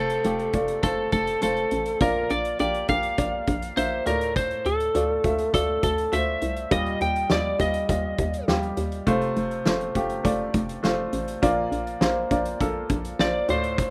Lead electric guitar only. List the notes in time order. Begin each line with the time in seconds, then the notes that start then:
Already playing: A4
0.84 A4
1.13 A4
1.43 A4
2.02 A#4
2.31 D5
2.60 D5
2.89 F5
3.77 C5
4.07 A#4
4.37 C5
4.66 A4
5.54 A4
5.84 A4
6.13 E5
6.72 D#5
7.02 G5
7.32 D5
7.61 D#5
13.21 D5
13.50 C5